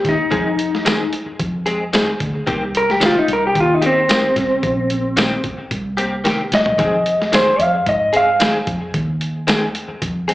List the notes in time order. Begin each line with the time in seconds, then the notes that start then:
0.05 D#2 D#4, kick, snare, closed hi-hat
0.31 F2 D#3 G#3 C4 G#4, kick, closed hi-hat
0.59 closed hi-hat
0.75 snare
0.85 D#3 G#3 C4 G#4, snare, closed hi-hat, tambourine
1.13 closed hi-hat
1.26 muted fingered electric bass stroke
1.40 F2, kick, closed hi-hat
1.66 G#3 C4 G#4, closed hi-hat
1.93 D#3 G#3 C4 G#4, snare, closed hi-hat, tambourine
2.20 D2, kick, closed hi-hat
2.47 C2 D#3 A#3 C4 G4, kick, closed hi-hat
2.75 A#4, closed hi-hat
2.90 G4, snare
3.00 D#3 A#3 C4 G4, snare, closed hi-hat, tambourine
3.05 F4
3.19 D#4
3.28 C2, closed hi-hat
3.33 A#4
3.47 G4
3.55 D#2, kick, closed hi-hat
3.60 F4
3.74 D#4
3.82 A#3 C4 G4, closed hi-hat
3.86 C4
4.09 D#3 A#3 C4 G4, snare, closed hi-hat, tambourine
4.36 C2, kick, snare, closed hi-hat
4.63 A#1, kick, closed hi-hat
4.90 closed hi-hat
5.17 D#3 A#3 C4 G4, snare, closed hi-hat, tambourine
5.44 kick, closed hi-hat
5.58 muted fingered electric bass stroke
5.71 C2, kick, closed hi-hat
5.97 A#3 C4 G4, closed hi-hat
6.24 D#3 A#3 C4 G4, snare, closed hi-hat
6.52 C2 D#5, snare, closed hi-hat
6.66 floor tom
6.78 F2 D#3 G#3 C4 G#4, kick, closed hi-hat
7.06 closed hi-hat
7.22 snare
7.32 D#3 G#3 C4 G#4 C5, snare, closed hi-hat, tambourine
7.59 F2 F5, closed hi-hat
7.86 G#2 D#5, kick, closed hi-hat
8.13 G#3 C4 G#4 F5, closed hi-hat
8.40 D#3 G#3 C4 G#4, snare, closed hi-hat, tambourine
8.67 F2, kick, closed hi-hat
8.94 D#2, kick, closed hi-hat
9.21 closed hi-hat
9.47 D#3 G#3 C4 G#4, snare, closed hi-hat, tambourine
9.75 closed hi-hat
9.88 muted fingered electric bass stroke
10.02 F2, kick, closed hi-hat
10.28 G#3 C4 G#4, closed hi-hat